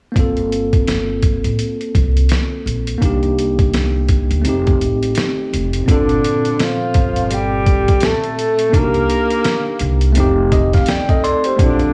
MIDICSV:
0, 0, Header, 1, 6, 480
1, 0, Start_track
1, 0, Key_signature, -2, "minor"
1, 0, Tempo, 714286
1, 108, Time_signature, 4, 2, 24, 8
1, 8018, End_track
2, 0, Start_track
2, 0, Title_t, "Flugelhorn"
2, 0, Program_c, 0, 56
2, 3970, Note_on_c, 0, 62, 94
2, 4453, Note_on_c, 0, 65, 88
2, 4463, Note_off_c, 0, 62, 0
2, 4934, Note_on_c, 0, 67, 100
2, 4944, Note_off_c, 0, 65, 0
2, 5413, Note_on_c, 0, 69, 95
2, 5423, Note_off_c, 0, 67, 0
2, 5893, Note_on_c, 0, 70, 119
2, 5903, Note_off_c, 0, 69, 0
2, 6841, Note_off_c, 0, 70, 0
2, 7800, Note_on_c, 0, 62, 90
2, 8018, Note_off_c, 0, 62, 0
2, 8018, End_track
3, 0, Start_track
3, 0, Title_t, "Tine electric piano"
3, 0, Program_c, 1, 4
3, 80, Note_on_c, 1, 58, 60
3, 96, Note_on_c, 1, 60, 56
3, 115, Note_on_c, 1, 65, 56
3, 129, Note_on_c, 1, 69, 69
3, 1987, Note_off_c, 1, 58, 0
3, 1995, Note_off_c, 1, 60, 0
3, 2002, Note_on_c, 1, 58, 64
3, 2005, Note_off_c, 1, 65, 0
3, 2012, Note_off_c, 1, 69, 0
3, 2020, Note_on_c, 1, 62, 59
3, 2036, Note_on_c, 1, 63, 60
3, 2053, Note_on_c, 1, 67, 74
3, 2956, Note_off_c, 1, 58, 0
3, 2965, Note_off_c, 1, 62, 0
3, 2967, Note_on_c, 1, 57, 67
3, 2973, Note_off_c, 1, 63, 0
3, 2981, Note_off_c, 1, 67, 0
3, 2983, Note_on_c, 1, 60, 59
3, 2999, Note_on_c, 1, 63, 58
3, 3017, Note_on_c, 1, 67, 71
3, 3918, Note_off_c, 1, 57, 0
3, 3925, Note_on_c, 1, 46, 60
3, 3926, Note_off_c, 1, 60, 0
3, 3934, Note_off_c, 1, 63, 0
3, 3939, Note_on_c, 1, 60, 52
3, 3944, Note_off_c, 1, 67, 0
3, 3956, Note_on_c, 1, 65, 52
3, 3973, Note_on_c, 1, 69, 65
3, 5829, Note_off_c, 1, 46, 0
3, 5836, Note_off_c, 1, 60, 0
3, 5843, Note_on_c, 1, 58, 57
3, 5845, Note_off_c, 1, 65, 0
3, 5854, Note_off_c, 1, 69, 0
3, 5861, Note_on_c, 1, 62, 54
3, 5878, Note_on_c, 1, 63, 54
3, 5893, Note_on_c, 1, 66, 51
3, 5933, Note_off_c, 1, 66, 0
3, 5939, Note_on_c, 1, 67, 65
3, 6796, Note_off_c, 1, 58, 0
3, 6804, Note_on_c, 1, 57, 74
3, 6805, Note_off_c, 1, 62, 0
3, 6814, Note_off_c, 1, 63, 0
3, 6822, Note_on_c, 1, 60, 66
3, 6838, Note_on_c, 1, 63, 68
3, 6845, Note_off_c, 1, 67, 0
3, 6853, Note_on_c, 1, 67, 86
3, 7071, Note_on_c, 1, 75, 69
3, 7202, Note_off_c, 1, 75, 0
3, 7218, Note_on_c, 1, 77, 69
3, 7305, Note_off_c, 1, 77, 0
3, 7311, Note_off_c, 1, 67, 0
3, 7314, Note_on_c, 1, 79, 70
3, 7317, Note_on_c, 1, 74, 50
3, 7448, Note_off_c, 1, 74, 0
3, 7457, Note_on_c, 1, 75, 69
3, 7459, Note_on_c, 1, 69, 59
3, 7535, Note_off_c, 1, 79, 0
3, 7546, Note_off_c, 1, 75, 0
3, 7547, Note_off_c, 1, 69, 0
3, 7551, Note_on_c, 1, 74, 72
3, 7552, Note_on_c, 1, 84, 68
3, 7556, Note_on_c, 1, 69, 59
3, 7685, Note_off_c, 1, 74, 0
3, 7688, Note_off_c, 1, 69, 0
3, 7697, Note_on_c, 1, 72, 60
3, 7698, Note_on_c, 1, 67, 50
3, 7756, Note_off_c, 1, 57, 0
3, 7766, Note_off_c, 1, 60, 0
3, 7771, Note_on_c, 1, 57, 63
3, 7773, Note_off_c, 1, 84, 0
3, 7774, Note_off_c, 1, 63, 0
3, 7788, Note_on_c, 1, 60, 54
3, 7804, Note_on_c, 1, 62, 55
3, 7820, Note_on_c, 1, 64, 55
3, 7856, Note_off_c, 1, 64, 0
3, 7864, Note_on_c, 1, 65, 68
3, 7922, Note_off_c, 1, 67, 0
3, 7922, Note_off_c, 1, 72, 0
3, 8018, Note_off_c, 1, 57, 0
3, 8018, Note_off_c, 1, 60, 0
3, 8018, Note_off_c, 1, 62, 0
3, 8018, Note_off_c, 1, 65, 0
3, 8018, End_track
4, 0, Start_track
4, 0, Title_t, "Tenor saxophone"
4, 0, Program_c, 2, 66
4, 3946, Note_on_c, 2, 50, 70
4, 4435, Note_on_c, 2, 53, 79
4, 4445, Note_off_c, 2, 50, 0
4, 4913, Note_on_c, 2, 55, 89
4, 4923, Note_off_c, 2, 53, 0
4, 5395, Note_on_c, 2, 57, 86
4, 5405, Note_off_c, 2, 55, 0
4, 5873, Note_on_c, 2, 58, 90
4, 5883, Note_off_c, 2, 57, 0
4, 6830, Note_off_c, 2, 58, 0
4, 7785, Note_on_c, 2, 50, 76
4, 8018, Note_off_c, 2, 50, 0
4, 8018, End_track
5, 0, Start_track
5, 0, Title_t, "Upright bass"
5, 0, Program_c, 3, 32
5, 106, Note_on_c, 3, 31, 89
5, 943, Note_off_c, 3, 31, 0
5, 969, Note_on_c, 3, 33, 81
5, 1053, Note_off_c, 3, 33, 0
5, 1309, Note_on_c, 3, 36, 87
5, 1515, Note_off_c, 3, 36, 0
5, 1787, Note_on_c, 3, 34, 77
5, 1993, Note_off_c, 3, 34, 0
5, 2029, Note_on_c, 3, 36, 90
5, 2864, Note_off_c, 3, 36, 0
5, 2895, Note_on_c, 3, 38, 77
5, 2976, Note_off_c, 3, 38, 0
5, 2992, Note_on_c, 3, 29, 95
5, 3196, Note_off_c, 3, 29, 0
5, 3234, Note_on_c, 3, 33, 81
5, 3438, Note_off_c, 3, 33, 0
5, 3715, Note_on_c, 3, 29, 77
5, 3918, Note_off_c, 3, 29, 0
5, 3953, Note_on_c, 3, 31, 92
5, 4157, Note_off_c, 3, 31, 0
5, 4669, Note_on_c, 3, 31, 88
5, 5265, Note_off_c, 3, 31, 0
5, 5870, Note_on_c, 3, 36, 91
5, 6075, Note_off_c, 3, 36, 0
5, 6589, Note_on_c, 3, 36, 87
5, 6795, Note_off_c, 3, 36, 0
5, 6834, Note_on_c, 3, 29, 104
5, 7244, Note_off_c, 3, 29, 0
5, 7788, Note_on_c, 3, 34, 98
5, 7995, Note_off_c, 3, 34, 0
5, 8018, End_track
6, 0, Start_track
6, 0, Title_t, "Drums"
6, 106, Note_on_c, 9, 36, 96
6, 110, Note_on_c, 9, 42, 70
6, 174, Note_off_c, 9, 36, 0
6, 177, Note_off_c, 9, 42, 0
6, 247, Note_on_c, 9, 42, 30
6, 314, Note_off_c, 9, 42, 0
6, 352, Note_on_c, 9, 42, 63
6, 419, Note_off_c, 9, 42, 0
6, 490, Note_on_c, 9, 36, 88
6, 490, Note_on_c, 9, 42, 43
6, 557, Note_off_c, 9, 42, 0
6, 558, Note_off_c, 9, 36, 0
6, 588, Note_on_c, 9, 42, 77
6, 593, Note_on_c, 9, 38, 94
6, 655, Note_off_c, 9, 42, 0
6, 660, Note_off_c, 9, 38, 0
6, 824, Note_on_c, 9, 42, 71
6, 825, Note_on_c, 9, 36, 75
6, 891, Note_off_c, 9, 42, 0
6, 892, Note_off_c, 9, 36, 0
6, 970, Note_on_c, 9, 42, 52
6, 1037, Note_off_c, 9, 42, 0
6, 1067, Note_on_c, 9, 42, 82
6, 1134, Note_off_c, 9, 42, 0
6, 1215, Note_on_c, 9, 42, 30
6, 1282, Note_off_c, 9, 42, 0
6, 1309, Note_on_c, 9, 36, 80
6, 1311, Note_on_c, 9, 42, 64
6, 1376, Note_off_c, 9, 36, 0
6, 1378, Note_off_c, 9, 42, 0
6, 1456, Note_on_c, 9, 42, 50
6, 1523, Note_off_c, 9, 42, 0
6, 1539, Note_on_c, 9, 42, 81
6, 1556, Note_on_c, 9, 38, 98
6, 1606, Note_off_c, 9, 42, 0
6, 1624, Note_off_c, 9, 38, 0
6, 1796, Note_on_c, 9, 42, 66
6, 1863, Note_off_c, 9, 42, 0
6, 1930, Note_on_c, 9, 42, 50
6, 1997, Note_off_c, 9, 42, 0
6, 2027, Note_on_c, 9, 36, 98
6, 2031, Note_on_c, 9, 42, 76
6, 2095, Note_off_c, 9, 36, 0
6, 2098, Note_off_c, 9, 42, 0
6, 2169, Note_on_c, 9, 42, 29
6, 2236, Note_off_c, 9, 42, 0
6, 2275, Note_on_c, 9, 42, 68
6, 2342, Note_off_c, 9, 42, 0
6, 2411, Note_on_c, 9, 36, 85
6, 2411, Note_on_c, 9, 42, 47
6, 2478, Note_off_c, 9, 36, 0
6, 2478, Note_off_c, 9, 42, 0
6, 2510, Note_on_c, 9, 42, 80
6, 2514, Note_on_c, 9, 38, 94
6, 2577, Note_off_c, 9, 42, 0
6, 2581, Note_off_c, 9, 38, 0
6, 2745, Note_on_c, 9, 42, 72
6, 2747, Note_on_c, 9, 36, 77
6, 2812, Note_off_c, 9, 42, 0
6, 2814, Note_off_c, 9, 36, 0
6, 2894, Note_on_c, 9, 42, 50
6, 2961, Note_off_c, 9, 42, 0
6, 2989, Note_on_c, 9, 42, 86
6, 3056, Note_off_c, 9, 42, 0
6, 3137, Note_on_c, 9, 42, 32
6, 3140, Note_on_c, 9, 36, 85
6, 3204, Note_off_c, 9, 42, 0
6, 3207, Note_off_c, 9, 36, 0
6, 3235, Note_on_c, 9, 42, 69
6, 3302, Note_off_c, 9, 42, 0
6, 3378, Note_on_c, 9, 42, 50
6, 3445, Note_off_c, 9, 42, 0
6, 3461, Note_on_c, 9, 42, 86
6, 3478, Note_on_c, 9, 38, 102
6, 3528, Note_off_c, 9, 42, 0
6, 3545, Note_off_c, 9, 38, 0
6, 3719, Note_on_c, 9, 42, 70
6, 3787, Note_off_c, 9, 42, 0
6, 3852, Note_on_c, 9, 42, 53
6, 3919, Note_off_c, 9, 42, 0
6, 3951, Note_on_c, 9, 36, 93
6, 3954, Note_on_c, 9, 42, 83
6, 4018, Note_off_c, 9, 36, 0
6, 4022, Note_off_c, 9, 42, 0
6, 4093, Note_on_c, 9, 42, 31
6, 4161, Note_off_c, 9, 42, 0
6, 4197, Note_on_c, 9, 42, 73
6, 4264, Note_off_c, 9, 42, 0
6, 4335, Note_on_c, 9, 42, 48
6, 4402, Note_off_c, 9, 42, 0
6, 4432, Note_on_c, 9, 42, 84
6, 4437, Note_on_c, 9, 38, 109
6, 4499, Note_off_c, 9, 42, 0
6, 4504, Note_off_c, 9, 38, 0
6, 4665, Note_on_c, 9, 42, 70
6, 4668, Note_on_c, 9, 36, 82
6, 4732, Note_off_c, 9, 42, 0
6, 4736, Note_off_c, 9, 36, 0
6, 4812, Note_on_c, 9, 42, 55
6, 4880, Note_off_c, 9, 42, 0
6, 4909, Note_on_c, 9, 42, 91
6, 4977, Note_off_c, 9, 42, 0
6, 5150, Note_on_c, 9, 36, 90
6, 5150, Note_on_c, 9, 42, 66
6, 5217, Note_off_c, 9, 42, 0
6, 5218, Note_off_c, 9, 36, 0
6, 5296, Note_on_c, 9, 42, 52
6, 5300, Note_on_c, 9, 36, 86
6, 5363, Note_off_c, 9, 42, 0
6, 5367, Note_off_c, 9, 36, 0
6, 5379, Note_on_c, 9, 42, 86
6, 5397, Note_on_c, 9, 38, 110
6, 5447, Note_off_c, 9, 42, 0
6, 5464, Note_off_c, 9, 38, 0
6, 5535, Note_on_c, 9, 42, 33
6, 5602, Note_off_c, 9, 42, 0
6, 5637, Note_on_c, 9, 42, 74
6, 5704, Note_off_c, 9, 42, 0
6, 5771, Note_on_c, 9, 42, 57
6, 5838, Note_off_c, 9, 42, 0
6, 5869, Note_on_c, 9, 36, 102
6, 5873, Note_on_c, 9, 42, 78
6, 5936, Note_off_c, 9, 36, 0
6, 5940, Note_off_c, 9, 42, 0
6, 6009, Note_on_c, 9, 42, 33
6, 6076, Note_off_c, 9, 42, 0
6, 6112, Note_on_c, 9, 42, 69
6, 6179, Note_off_c, 9, 42, 0
6, 6252, Note_on_c, 9, 42, 50
6, 6319, Note_off_c, 9, 42, 0
6, 6346, Note_on_c, 9, 42, 81
6, 6351, Note_on_c, 9, 38, 105
6, 6413, Note_off_c, 9, 42, 0
6, 6418, Note_off_c, 9, 38, 0
6, 6582, Note_on_c, 9, 42, 75
6, 6649, Note_off_c, 9, 42, 0
6, 6727, Note_on_c, 9, 42, 54
6, 6795, Note_off_c, 9, 42, 0
6, 6821, Note_on_c, 9, 42, 92
6, 6889, Note_off_c, 9, 42, 0
6, 7068, Note_on_c, 9, 42, 66
6, 7069, Note_on_c, 9, 36, 88
6, 7135, Note_off_c, 9, 42, 0
6, 7136, Note_off_c, 9, 36, 0
6, 7213, Note_on_c, 9, 42, 50
6, 7218, Note_on_c, 9, 36, 86
6, 7222, Note_on_c, 9, 38, 30
6, 7280, Note_off_c, 9, 42, 0
6, 7285, Note_off_c, 9, 36, 0
6, 7289, Note_off_c, 9, 38, 0
6, 7297, Note_on_c, 9, 42, 86
6, 7314, Note_on_c, 9, 38, 109
6, 7364, Note_off_c, 9, 42, 0
6, 7381, Note_off_c, 9, 38, 0
6, 7451, Note_on_c, 9, 36, 88
6, 7451, Note_on_c, 9, 42, 33
6, 7519, Note_off_c, 9, 36, 0
6, 7519, Note_off_c, 9, 42, 0
6, 7555, Note_on_c, 9, 42, 78
6, 7622, Note_off_c, 9, 42, 0
6, 7687, Note_on_c, 9, 42, 53
6, 7754, Note_off_c, 9, 42, 0
6, 7788, Note_on_c, 9, 36, 100
6, 7789, Note_on_c, 9, 42, 83
6, 7855, Note_off_c, 9, 36, 0
6, 7856, Note_off_c, 9, 42, 0
6, 7926, Note_on_c, 9, 42, 34
6, 7993, Note_off_c, 9, 42, 0
6, 8018, End_track
0, 0, End_of_file